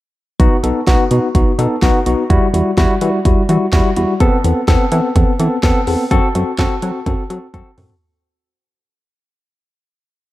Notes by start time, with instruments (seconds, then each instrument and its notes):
0.40 analog synth bass B1, tine electric piano B3 D#4 F#4, kick, closed hi-hat
0.63 analog synth bass B1, tine electric piano B3 D#4 A4, closed hi-hat
0.87 analog synth bass B1, tine electric piano B3 D#4 F#4, kick, snare, closed hi-hat
1.11 analog synth bass B2, tine electric piano B3 D#4 F#4, closed hi-hat
1.35 analog synth bass B1, tine electric piano B3 D#4 F#4, kick, closed hi-hat
1.59 analog synth bass B2, tine electric piano B3 D#4 A4, closed hi-hat
1.82 analog synth bass B1, tine electric piano B3 D#4 F#4, kick, snare, closed hi-hat
2.06 analog synth bass B1, tine electric piano B3 D#4 F#4, closed hi-hat
2.30 analog synth bass E2, tine electric piano G3 E4 F#4, kick, closed hi-hat
2.54 analog synth bass E2, tine electric piano G3 E4 F#4, closed hi-hat
2.77 analog synth bass E2, tine electric piano G3 E4 F#4, kick, snare, closed hi-hat
3.01 analog synth bass E3, tine electric piano G3 E4 F#4, closed hi-hat
3.25 analog synth bass E2, tine electric piano G3 E4 F#4, kick, closed hi-hat
3.49 analog synth bass E3, tine electric piano G3 E4 F#4, closed hi-hat
3.73 analog synth bass E2, tine electric piano G3 E4 F#4, kick, snare, closed hi-hat
3.96 analog synth bass E2, tine electric piano G3 E4 F#4, closed hi-hat
4.20 analog synth bass E2, tine electric piano B3 C4 A4, kick, closed hi-hat
4.44 analog synth bass E2, tine electric piano B3 C4 A4, closed hi-hat
4.68 analog synth bass E2, tine electric piano B3 C4 A4, kick, snare, closed hi-hat
4.92 analog synth bass E3, tine electric piano B3 C4 A4, closed hi-hat
5.16 analog synth bass E2, tine electric piano B3 C4 A4, kick, closed hi-hat
5.40 analog synth bass E3, tine electric piano B3 C4 A4, closed hi-hat
5.63 analog synth bass E2, tine electric piano B3 C4 A4, kick, snare, closed hi-hat
5.87 analog synth bass E2, tine electric piano B3 C4 A4, open hi-hat
6.11 analog synth bass F#2, tine electric piano C4 F#4 A4, kick, closed hi-hat
6.35 analog synth bass F#2, tine electric piano C4 F#4 A4, closed hi-hat
6.59 analog synth bass F#2, tine electric piano C4 F#4 A4, kick, snare, clap, closed hi-hat
6.82 analog synth bass F#3, tine electric piano C4 F#4 A4, closed hi-hat
7.06 analog synth bass F#2, tine electric piano C4 F#4 A4, kick, closed hi-hat
7.30 analog synth bass F#3, tine electric piano C4 F#4 A4, closed hi-hat
7.54 analog synth bass F#2, tine electric piano C4 F#4 A4, kick, closed hi-hat, high tom
7.78 analog synth bass F#2, tine electric piano C4 F#4 A4, mid tom, open hi-hat
7.90 floor tom